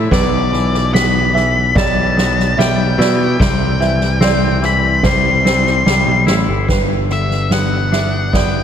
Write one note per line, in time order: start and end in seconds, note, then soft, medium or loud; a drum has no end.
0.00 0.53 E3 medium
0.00 0.12 A3 medium
0.00 0.12 C4 medium
0.00 2.98 E4 medium
0.11 1.72 B1 medium
0.11 2.17 B2 medium
0.11 0.94 B4 medium
0.11 0.90 D5 medium
0.11 kick loud
0.11 snare loud
0.53 1.33 E3 medium
0.53 snare soft
0.74 snare soft
0.93 2.16 B3 medium
0.93 1.77 B5 medium
0.93 snare loud
1.33 3.40 E3 medium
1.33 1.75 E5 medium
1.33 snare soft
1.75 2.54 B1 loud
1.75 2.58 G3 medium
1.75 2.58 D5 medium
1.75 2.61 A5 medium
1.75 kick loud
1.75 snare loud
2.17 3.40 B3 medium
2.17 snare medium
2.39 snare soft
2.57 2.95 B1 medium
2.57 5.04 G3 medium
2.57 2.99 E5 medium
2.57 3.40 G5 medium
2.57 snare medium
2.98 3.36 B2 medium
2.98 3.40 E4 medium
2.98 3.81 D5 medium
2.98 snare medium
3.40 5.00 C2 medium
3.40 5.45 C3 medium
3.40 4.67 G5 medium
3.40 kick loud
3.40 snare loud
3.80 4.61 E3 medium
3.80 4.22 E5 medium
3.80 snare soft
4.01 snare soft
4.21 5.44 C4 medium
4.21 5.04 D5 medium
4.21 snare loud
4.62 6.68 E3 medium
4.62 5.06 B5 loud
4.62 snare soft
5.03 5.82 C2 loud
5.03 5.85 G3 medium
5.03 5.44 C5 medium
5.03 6.24 C6 medium
5.03 kick loud
5.03 snare loud
5.45 6.68 C4 medium
5.45 6.28 C5 medium
5.45 snare medium
5.66 snare soft
5.86 6.05 C2 medium
5.86 6.68 G3 medium
5.86 snare medium
6.07 6.25 B1 medium
6.27 6.46 A1 medium
6.27 6.68 E4 medium
6.27 snare medium
6.49 6.67 G1 medium
6.68 8.63 G1 medium
6.68 8.63 G2 medium
6.68 7.51 B4 medium
6.68 kick medium
6.68 snare medium
7.09 8.63 D3 medium
7.09 7.52 E5 medium
7.09 snare soft
7.31 snare soft
7.51 8.32 B3 medium
7.51 8.37 F#5 medium
7.51 snare medium
7.92 8.63 D4 medium
7.92 8.33 E5 medium
7.92 snare medium
8.33 8.63 B3 medium
8.33 8.63 D5 medium
8.33 kick medium
8.33 snare medium
8.37 8.63 G5 medium